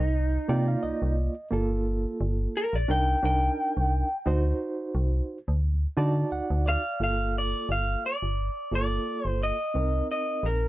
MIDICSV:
0, 0, Header, 1, 4, 480
1, 0, Start_track
1, 0, Key_signature, -2, "minor"
1, 0, Tempo, 685714
1, 1063, Time_signature, 4, 2, 24, 8
1, 7479, End_track
2, 0, Start_track
2, 0, Title_t, "Clean electric guitar"
2, 0, Program_c, 0, 27
2, 0, Note_on_c, 0, 63, 94
2, 803, Note_off_c, 0, 63, 0
2, 1799, Note_on_c, 0, 70, 109
2, 1920, Note_off_c, 0, 70, 0
2, 1928, Note_on_c, 0, 74, 99
2, 2026, Note_off_c, 0, 74, 0
2, 2036, Note_on_c, 0, 79, 92
2, 2262, Note_off_c, 0, 79, 0
2, 2279, Note_on_c, 0, 79, 123
2, 2969, Note_off_c, 0, 79, 0
2, 4680, Note_on_c, 0, 77, 105
2, 4916, Note_off_c, 0, 77, 0
2, 4925, Note_on_c, 0, 77, 99
2, 5161, Note_off_c, 0, 77, 0
2, 5168, Note_on_c, 0, 74, 89
2, 5399, Note_off_c, 0, 74, 0
2, 5402, Note_on_c, 0, 77, 99
2, 5640, Note_off_c, 0, 77, 0
2, 5642, Note_on_c, 0, 74, 88
2, 6119, Note_off_c, 0, 74, 0
2, 6128, Note_on_c, 0, 74, 93
2, 6492, Note_off_c, 0, 74, 0
2, 6492, Note_on_c, 0, 72, 93
2, 6601, Note_off_c, 0, 72, 0
2, 6604, Note_on_c, 0, 75, 90
2, 7046, Note_off_c, 0, 75, 0
2, 7081, Note_on_c, 0, 75, 83
2, 7320, Note_off_c, 0, 75, 0
2, 7323, Note_on_c, 0, 70, 81
2, 7479, Note_off_c, 0, 70, 0
2, 7479, End_track
3, 0, Start_track
3, 0, Title_t, "Reed electric piano"
3, 0, Program_c, 1, 4
3, 340, Note_on_c, 1, 58, 92
3, 345, Note_on_c, 1, 74, 91
3, 345, Note_on_c, 1, 79, 73
3, 350, Note_on_c, 1, 65, 96
3, 468, Note_off_c, 1, 79, 0
3, 476, Note_on_c, 1, 77, 67
3, 576, Note_off_c, 1, 77, 0
3, 579, Note_on_c, 1, 75, 80
3, 931, Note_off_c, 1, 58, 0
3, 934, Note_off_c, 1, 74, 0
3, 936, Note_off_c, 1, 65, 0
3, 1033, Note_off_c, 1, 75, 0
3, 1056, Note_on_c, 1, 58, 90
3, 1064, Note_on_c, 1, 65, 78
3, 1071, Note_on_c, 1, 69, 90
3, 1837, Note_off_c, 1, 58, 0
3, 1841, Note_off_c, 1, 65, 0
3, 1844, Note_off_c, 1, 69, 0
3, 2018, Note_on_c, 1, 62, 81
3, 2024, Note_on_c, 1, 63, 78
3, 2029, Note_on_c, 1, 70, 94
3, 2219, Note_off_c, 1, 62, 0
3, 2221, Note_off_c, 1, 63, 0
3, 2224, Note_off_c, 1, 70, 0
3, 2257, Note_on_c, 1, 62, 80
3, 2262, Note_on_c, 1, 63, 73
3, 2268, Note_on_c, 1, 70, 82
3, 2849, Note_off_c, 1, 62, 0
3, 2852, Note_off_c, 1, 63, 0
3, 2855, Note_off_c, 1, 70, 0
3, 2981, Note_on_c, 1, 63, 91
3, 2986, Note_on_c, 1, 66, 84
3, 2991, Note_on_c, 1, 72, 95
3, 3759, Note_off_c, 1, 63, 0
3, 3762, Note_off_c, 1, 66, 0
3, 3764, Note_off_c, 1, 72, 0
3, 4176, Note_on_c, 1, 63, 91
3, 4182, Note_on_c, 1, 66, 84
3, 4182, Note_on_c, 1, 81, 80
3, 4188, Note_on_c, 1, 74, 99
3, 4405, Note_off_c, 1, 81, 0
3, 4424, Note_on_c, 1, 78, 78
3, 4647, Note_off_c, 1, 78, 0
3, 4654, Note_off_c, 1, 74, 0
3, 4662, Note_on_c, 1, 74, 74
3, 4769, Note_off_c, 1, 63, 0
3, 4772, Note_off_c, 1, 66, 0
3, 4886, Note_off_c, 1, 74, 0
3, 4900, Note_on_c, 1, 58, 67
3, 4906, Note_on_c, 1, 65, 59
3, 4911, Note_on_c, 1, 69, 68
3, 5679, Note_off_c, 1, 58, 0
3, 5682, Note_off_c, 1, 65, 0
3, 5685, Note_off_c, 1, 69, 0
3, 6101, Note_on_c, 1, 58, 73
3, 6108, Note_on_c, 1, 65, 62
3, 6112, Note_on_c, 1, 69, 74
3, 6692, Note_off_c, 1, 58, 0
3, 6696, Note_off_c, 1, 65, 0
3, 6698, Note_off_c, 1, 69, 0
3, 6818, Note_on_c, 1, 60, 69
3, 6826, Note_on_c, 1, 63, 63
3, 6832, Note_on_c, 1, 70, 72
3, 7479, Note_off_c, 1, 60, 0
3, 7479, Note_off_c, 1, 63, 0
3, 7479, Note_off_c, 1, 70, 0
3, 7479, End_track
4, 0, Start_track
4, 0, Title_t, "FM bass"
4, 0, Program_c, 2, 39
4, 0, Note_on_c, 2, 36, 93
4, 267, Note_off_c, 2, 36, 0
4, 344, Note_on_c, 2, 48, 98
4, 532, Note_off_c, 2, 48, 0
4, 584, Note_on_c, 2, 36, 41
4, 651, Note_off_c, 2, 36, 0
4, 714, Note_on_c, 2, 36, 86
4, 903, Note_off_c, 2, 36, 0
4, 1064, Note_on_c, 2, 31, 97
4, 1439, Note_off_c, 2, 31, 0
4, 1544, Note_on_c, 2, 31, 111
4, 1732, Note_off_c, 2, 31, 0
4, 1913, Note_on_c, 2, 34, 92
4, 1998, Note_off_c, 2, 34, 0
4, 2021, Note_on_c, 2, 36, 112
4, 2210, Note_off_c, 2, 36, 0
4, 2262, Note_on_c, 2, 36, 99
4, 2450, Note_off_c, 2, 36, 0
4, 2638, Note_on_c, 2, 36, 97
4, 2825, Note_off_c, 2, 36, 0
4, 2985, Note_on_c, 2, 38, 115
4, 3172, Note_off_c, 2, 38, 0
4, 3463, Note_on_c, 2, 36, 102
4, 3651, Note_off_c, 2, 36, 0
4, 3836, Note_on_c, 2, 38, 95
4, 4108, Note_off_c, 2, 38, 0
4, 4181, Note_on_c, 2, 50, 95
4, 4369, Note_off_c, 2, 50, 0
4, 4422, Note_on_c, 2, 38, 46
4, 4489, Note_off_c, 2, 38, 0
4, 4553, Note_on_c, 2, 38, 87
4, 4742, Note_off_c, 2, 38, 0
4, 4901, Note_on_c, 2, 31, 95
4, 5277, Note_off_c, 2, 31, 0
4, 5382, Note_on_c, 2, 31, 101
4, 5571, Note_off_c, 2, 31, 0
4, 5758, Note_on_c, 2, 31, 86
4, 5945, Note_off_c, 2, 31, 0
4, 6103, Note_on_c, 2, 31, 90
4, 6291, Note_off_c, 2, 31, 0
4, 6475, Note_on_c, 2, 31, 87
4, 6664, Note_off_c, 2, 31, 0
4, 6826, Note_on_c, 2, 36, 96
4, 7013, Note_off_c, 2, 36, 0
4, 7303, Note_on_c, 2, 34, 98
4, 7479, Note_off_c, 2, 34, 0
4, 7479, End_track
0, 0, End_of_file